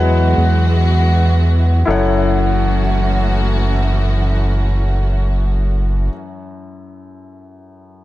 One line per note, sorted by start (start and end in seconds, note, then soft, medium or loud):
0.00 0.34 E2 medium
0.00 1.86 E3 medium
0.00 0.59 F#3 soft
0.00 0.59 G#3 soft
0.00 1.84 G#3 medium
0.00 1.84 B3 medium
0.00 0.59 E4 soft
0.00 1.86 F#4 medium
0.00 1.34 B4 medium
0.00 1.32 F#5 medium
0.37 1.84 E2 medium
1.85 6.09 F#1 medium
1.85 6.09 F#2 medium
1.85 6.10 E3 medium
1.85 6.10 A3 medium
1.85 6.10 C#4 medium
1.85 6.07 E4 medium
1.85 6.10 F#4 medium
1.85 6.09 A4 medium
1.85 6.10 C#5 medium
1.90 6.12 F#5 medium